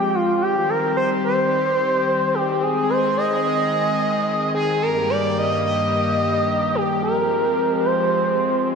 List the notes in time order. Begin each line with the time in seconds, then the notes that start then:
Already playing: F3 G#3 C4 G4 G5
0.14 F4
0.42 D#3 G3 G4
0.69 A#4
0.97 C5
1.24 C5
2.34 G4
2.62 G#3 G#4
2.90 C5
3.17 D#5
3.45 D#5
4.55 G#4
4.82 G2 G3 A#3 G4 A#4
5.10 D5
5.38 D#5
5.65 D#5
6.75 G4
7.03 F3 G#3 C4 A#4
7.85 C5